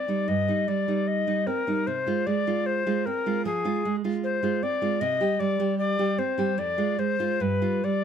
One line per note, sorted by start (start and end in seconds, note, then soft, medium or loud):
0.00 0.30 D5 soft
0.08 0.26 G3 soft
0.08 0.27 D#4 soft
0.28 0.47 G2 soft
0.28 0.69 D#5 medium
0.48 0.66 G3 soft
0.48 0.66 D#4 soft
0.68 0.87 G3 soft
0.68 1.09 D5 soft
0.88 1.24 G3 soft
0.88 1.24 D#4 soft
1.08 1.48 D#5 medium
1.27 1.45 G3 soft
1.27 1.46 D#4 soft
1.47 1.67 C4 soft
1.47 1.88 A#4 soft
1.67 1.85 G3 soft
1.67 1.85 D#4 soft
1.87 2.06 C3 soft
1.87 2.28 C5 medium
2.06 2.25 G#3 soft
2.06 2.25 F4 soft
2.26 2.46 G#3 soft
2.26 2.68 D5 medium
2.47 2.83 G#3 soft
2.47 2.83 F4 soft
2.66 3.07 C5 medium
2.86 3.04 G#3 soft
2.86 3.05 F4 soft
3.06 3.38 C4 soft
3.06 3.45 A#4 medium
3.26 3.44 G#3 soft
3.26 3.44 F4 soft
3.45 3.64 F3 soft
3.45 3.96 G#4 medium
3.65 3.82 G#3 soft
3.65 3.83 F4 soft
3.85 4.03 G#3 soft
4.04 4.39 G#3 soft
4.04 4.40 F4 soft
4.23 4.64 C5 medium
4.43 4.60 G#3 soft
4.43 4.61 F4 soft
4.63 4.94 C4 soft
4.63 5.02 D5 medium
4.81 4.99 G#3 soft
4.81 5.00 F4 soft
5.00 5.20 C3 medium
5.00 5.41 D#5 medium
5.20 5.38 G3 soft
5.20 5.38 G4 soft
5.39 5.58 G3 soft
5.39 5.78 D5 medium
5.59 5.95 G3 soft
5.59 5.95 G4 soft
5.78 6.20 D5 medium
5.99 6.17 G3 soft
5.99 6.17 G4 soft
6.18 6.50 C4 soft
6.18 6.60 C5 medium
6.38 6.56 G3 soft
6.38 6.57 G4 soft
6.58 6.78 F2 medium
6.58 7.00 D5 medium
6.78 6.97 G#3 soft
6.78 6.97 F4 soft
6.99 7.18 G#3 soft
6.99 7.43 C5 medium
7.19 7.38 G#3 soft
7.19 7.39 F4 soft
7.40 7.61 G2 soft
7.40 7.86 B4 medium
7.62 7.81 G3 soft
7.62 7.82 F4 soft
7.84 8.04 G3 soft
7.84 8.04 D5 medium